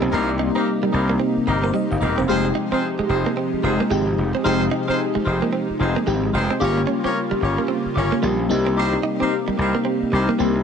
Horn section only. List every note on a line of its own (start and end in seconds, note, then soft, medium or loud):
0.11 0.31 A#3 loud
0.11 0.30 C4 loud
0.11 0.30 D#4 medium
0.11 0.31 G4 medium
0.11 0.31 A#4 loud
0.55 0.69 A#3 medium
0.55 0.69 C4 medium
0.55 0.69 D#4 medium
0.55 0.69 G4 medium
0.55 0.69 A#4 medium
0.92 1.12 A#3 medium
0.92 1.12 C4 medium
0.92 1.12 D#4 medium
0.92 1.12 G4 medium
0.92 1.12 A#4 medium
1.46 1.66 A#3 medium
1.46 1.66 C4 medium
1.46 1.66 D#4 medium
1.46 1.66 G4 medium
1.46 1.66 A#4 medium
2.01 2.20 A#3 medium
2.01 2.20 C4 medium
2.01 2.20 D#4 medium
2.01 2.20 G4 medium
2.01 2.20 A#4 medium
2.28 2.47 C4 loud
2.28 2.47 D#4 medium
2.28 2.47 F4 medium
2.28 2.47 G#4 medium
2.28 2.47 C5 loud
2.71 2.85 C4 medium
2.71 2.85 D#4 medium
2.71 2.85 F4 medium
2.71 2.85 G#4 medium
2.71 2.85 C5 medium
3.09 3.28 C4 medium
3.09 3.28 D#4 medium
3.09 3.28 F4 medium
3.09 3.28 G#4 medium
3.09 3.28 C5 medium
3.63 3.82 C4 medium
3.63 3.82 D#4 medium
3.63 3.82 F4 medium
3.63 3.82 G#4 medium
3.63 3.82 C5 medium
4.44 4.63 C4 loud
4.44 4.63 D#4 loud
4.44 4.63 F4 loud
4.44 4.63 G#4 medium
4.44 4.63 C5 loud
4.88 5.02 C4 medium
4.88 5.01 D#4 medium
4.88 5.01 F4 medium
4.88 5.02 G#4 medium
4.88 5.02 C5 medium
5.25 5.44 C4 medium
5.25 5.44 D#4 medium
5.25 5.44 F4 medium
5.25 5.44 G#4 medium
5.25 5.44 C5 medium
5.79 5.98 C4 medium
5.79 5.98 D#4 medium
5.79 5.98 F4 medium
5.79 5.98 G#4 medium
5.79 5.98 C5 medium
6.33 6.53 C4 medium
6.33 6.52 D#4 medium
6.33 6.52 F4 medium
6.33 6.52 G#4 medium
6.33 6.53 C5 medium
6.60 6.79 C#4 loud
6.60 6.79 F4 loud
6.60 6.79 G4 medium
6.60 6.79 A#4 medium
6.60 6.79 C#5 loud
7.04 7.18 C#4 medium
7.04 7.18 F4 medium
7.04 7.18 G4 medium
7.04 7.18 A#4 medium
7.04 7.18 C#5 medium
7.41 7.61 C#4 medium
7.41 7.60 F4 medium
7.41 7.60 G4 medium
7.41 7.61 A#4 medium
7.41 7.61 C#5 medium
7.95 8.14 C#4 medium
7.95 8.14 F4 medium
7.95 8.14 G4 medium
7.95 8.14 A#4 medium
7.95 8.14 C#5 medium
8.77 8.96 C4 loud
8.77 8.96 D#4 loud
8.77 8.96 G4 medium
8.77 8.96 A#4 medium
8.77 8.96 C5 loud
9.20 9.34 C4 medium
9.20 9.34 D#4 medium
9.20 9.34 G4 medium
9.20 9.34 A#4 medium
9.20 9.34 C5 medium
9.58 9.77 C4 medium
9.58 9.77 D#4 medium
9.58 9.77 G4 medium
9.58 9.77 A#4 medium
9.58 9.77 C5 medium
10.12 10.31 C4 medium
10.12 10.31 D#4 medium
10.12 10.31 G4 medium
10.12 10.31 A#4 medium
10.12 10.31 C5 medium